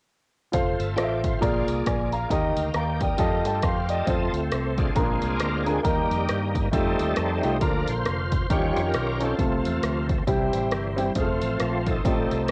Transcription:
0.52 F1 A3 C4 F4 A4 C5 F5, kick, closed hi-hat
0.80 G1 E5 A5, closed hi-hat
0.96 A1 F4 A4 C5 D5 D#5 G5, cross-stick, closed hi-hat
1.03 E5
1.24 C5 F5, kick, closed hi-hat
1.41 A#1 A#2 A#3 F4 G#4 A#4 D5, kick, closed hi-hat
1.68 C2, cross-stick, closed hi-hat
1.86 A#1 D5 G#5, kick, cross-stick, closed hi-hat
2.13 F5 A#5, closed hi-hat
2.30 D#2 D#3 A#3 D#4 F4 G4 A#4 D#5, kick, closed hi-hat
2.38 G4
2.56 D2 F5 A#5, closed hi-hat
2.74 D#2 D5 F5 G5 A#5, cross-stick, closed hi-hat
3.01 A#4 D5 D#5 G5, kick, closed hi-hat
3.18 F2 A3 F4 G4 A4 D#5 A5, kick, closed hi-hat
3.45 G2 A4 D#5 G5 A5, cross-stick, closed hi-hat
3.62 F2 C5 F5 G5 C6, kick, cross-stick, closed hi-hat
3.89 D5 D#5 G5 A5, closed hi-hat
4.07 F2 A3 C4 F4 A4 C5, kick, closed hi-hat
4.33 D2, closed hi-hat
4.51 C2, cross-stick, closed hi-hat
4.78 D4 F4 G#4, kick, closed hi-hat
4.87 cross-stick
4.95 A#1 A#2 G#3 C4 D4 F4 G#4 A#4, kick, closed hi-hat
5.22 C2, cross-stick, closed hi-hat
5.36 D2 A#4, closed hi-hat
5.40 cross-stick
5.64 D4 F4 G#4 A#4, closed hi-hat
5.83 D#2 D#3 G3 A#3 D#4 G4 A#4, kick, closed hi-hat
6.10 F2, closed hi-hat
6.29 G2, cross-stick, closed hi-hat
6.55 kick, closed hi-hat
6.65 cross-stick
6.72 F2 G3 A3 C4 D#4 F4 G4 A4, kick, closed hi-hat
6.99 D#2, cross-stick, closed hi-hat
7.16 F2, cross-stick, closed hi-hat
7.42 C2 A3 D#4 F4 G4, closed hi-hat
7.60 D2 D3 F3 A#3 D4 F4 A#4, kick, closed hi-hat
7.88 A#1 F4 C5, closed hi-hat
8.05 F1, cross-stick, closed hi-hat
8.32 kick, closed hi-hat
8.42 cross-stick
8.50 D#2 D#3 F3 G3 C#4 D#4 F4 G4 C#5, kick, closed hi-hat
8.76 F2, cross-stick, closed hi-hat
8.86 C#4 G4 A#4
8.94 B1, cross-stick, closed hi-hat
9.20 C4 C#4 D#4 F4 A4, closed hi-hat
9.25 A4
9.38 C2 C3 F3 A3 C4 F4 A4, kick, closed hi-hat
9.65 E2, closed hi-hat
9.83 D2, cross-stick, closed hi-hat
10.09 kick, closed hi-hat
10.18 cross-stick
10.27 C2 C3 E3 G3 C4 E4 G4, kick, closed hi-hat
10.53 A1, cross-stick, closed hi-hat
10.71 G1, cross-stick, closed hi-hat
10.96 G3 C4 E4 G4, closed hi-hat
11.15 F1 F3 A3 C4 F4 G#4, kick, closed hi-hat
11.22 A4
11.42 A1, closed hi-hat
11.60 A#1, cross-stick, closed hi-hat
11.87 C4 D#4 A4, kick, closed hi-hat
11.96 cross-stick
12.05 A1 A2 G3 A3 C4 D#4 F4 G4, kick, closed hi-hat
12.12 A4
12.31 C2, cross-stick, closed hi-hat
12.48 closed hi-hat

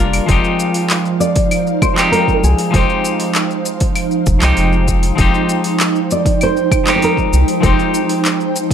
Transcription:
Already playing: G3 A#3 D4 F4 A#4 D5 F5
0.00 F1
0.13 open hi-hat, claves, shaker
0.26 F1 F3 G#3 C4 D#4 C5 F5, kick, open hi-hat, shaker
0.32 G4
0.44 shaker
0.60 shaker
0.74 open hi-hat, shaker
0.90 clap, open hi-hat, shaker
1.05 shaker
1.20 D5, shaker
1.36 kick, open hi-hat, shaker
1.51 open hi-hat, claves, shaker
1.67 shaker
1.82 C5, kick, claves, shaker
1.94 F3 G#3 C4, clap, open hi-hat, shaker
1.98 D#4 G4
2.12 A#4, open hi-hat, shaker
2.28 kick, shaker
2.36 A#4
2.43 C2 G#4, shaker
2.58 open hi-hat, shaker
2.71 F1 F3 G#3 C4, kick, open hi-hat, shaker
2.75 D#4 G4 C5
2.90 shaker
3.05 shaker
3.20 open hi-hat, shaker
3.35 clap, open hi-hat, shaker
3.51 shaker
3.65 shaker
3.80 kick, open hi-hat, shaker
3.95 open hi-hat, claves, shaker
4.11 shaker
4.26 F1, kick, shaker
4.39 C2 F3 G#3 C4, clap, open hi-hat, shaker
4.43 D#4 G4
4.57 F1, open hi-hat, shaker
4.72 shaker
4.88 kick, shaker
5.03 open hi-hat, shaker
5.16 F1 F3 G#3 C4 G5, kick, open hi-hat, shaker
5.20 D#4 G4
5.34 shaker
5.49 shaker
5.64 open hi-hat, shaker
5.80 clap, open hi-hat, shaker
5.96 shaker
6.11 D5, shaker
6.26 kick, open hi-hat, shaker
6.41 C5, open hi-hat, claves, shaker
6.57 shaker
6.72 kick, claves, shaker
6.84 F3 G#3 C4, clap, open hi-hat, shaker
6.88 D#4 G4
6.96 C5
7.02 A#4, open hi-hat, shaker
7.17 kick, shaker
7.33 C2, shaker
7.48 open hi-hat, shaker
7.61 F1 F3 G#3 C4, kick, open hi-hat, shaker
7.65 D#4 G4 C5
7.79 shaker
7.94 shaker
8.09 open hi-hat, shaker
8.25 clap, open hi-hat, shaker
8.41 shaker
8.56 shaker
8.71 kick

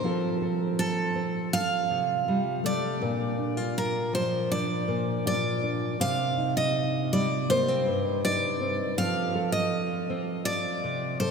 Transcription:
Already playing: C5
0.04 F3 C4 F4 A4
0.42 A4
0.79 A4
1.15 C4
1.53 F4 F5
1.90 C3
2.28 G3
2.64 A3 D5
3.02 A#2 D4
3.39 D4
3.57 F4
3.78 A#4
4.13 F3 C5
4.51 D4 D5
4.88 A#2
5.26 F4 D5
5.63 D4
6.00 C3 C4 F5
6.38 D#4
6.57 D#5
7.12 G3 D5
7.50 A#3 C5
7.68 C4
7.86 G2
8.25 D#4 D5
8.61 C4
8.98 F3 C4 F4 A4 F5
9.35 A4
9.52 D#5
10.10 C4
10.45 F4 D5
10.84 C3
11.20 A4 C5

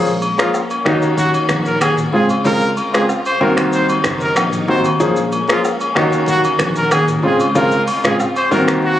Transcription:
Already playing: A#1 G#3 A#3 C#4
0.06 shaker
0.22 high agogo, shaker
0.38 F3 A#3 C#4 F4 G#4, finger snap, cross-stick, shaker
0.54 low woodblock, shaker
0.70 high agogo, shaker
0.85 D#2 D#3 A#3 C#4 D#4 F#4, finger snap, kick, cross-stick
1.02 shaker
1.17 F#4, kick, shaker
1.34 high agogo, shaker
1.49 A#1, finger snap, kick, cross-stick, shaker
1.66 A#4, shaker
1.81 D#2 G#4, finger snap, cross-stick, high agogo, low woodblock, shaker
1.97 mid tom, shaker
2.13 C#2 C#3 G#3 C4 F4 G#4, mid tom
2.29 high agogo, shaker
2.45 C#3 G#3 C4 F4 A#4, kick, shaker
2.61 shaker
2.77 high agogo, shaker
2.93 C#3 G#3 C4 F4 G#4, finger snap, cross-stick, shaker
3.09 low woodblock, shaker
3.25 C5, high agogo, shaker
3.40 C2 C3 D#3 F#3 A#3 C4 D#4 F#4 A#4, kick
3.57 finger snap, cross-stick, shaker
3.73 C5, shaker
3.89 high agogo, shaker
4.04 F#1, finger snap, kick, cross-stick, shaker
4.21 A#4, shaker
4.36 A#1, finger snap, cross-stick, high agogo, low woodblock, shaker
4.52 mid tom, shaker
4.68 D#2 D#3 A#3 C4 F#4 C5, kick, mid tom
4.84 high agogo, shaker
5.00 A#1 F3 G#3 A#3 C#4 G#4, kick, shaker
5.16 shaker
5.32 high agogo, shaker
5.48 F3 A#3 C#4 F4 G#4, finger snap, cross-stick, shaker
5.64 low woodblock, shaker
5.80 high agogo, shaker
5.95 D#2 D#3 A#3 C#4 D#4 F#4, finger snap, kick, cross-stick
6.12 shaker
6.28 F#4, kick, shaker
6.44 high agogo, shaker
6.59 A#1, finger snap, kick, cross-stick, shaker
6.76 A#4, shaker
6.91 D#2 G#4, finger snap, cross-stick, high agogo, low woodblock, shaker
7.08 mid tom, shaker
7.23 C#2 C#3 G#3 C4 F4 G#4, mid tom
7.40 high agogo, shaker
7.55 C#3 G#3 C4 F4 A#4, kick, shaker
7.72 shaker
7.87 open hi-hat, high agogo, shaker
8.04 C#3 G#3 C4 F4 G#4, finger snap, cross-stick, mid tom, shaker
8.20 low woodblock, shaker
8.36 C5, high agogo, shaker
8.51 C2 C3 D#3 A#3 C4 D#4 F#4 A#4, kick, shaker
8.68 finger snap, cross-stick, shaker
8.84 F#4

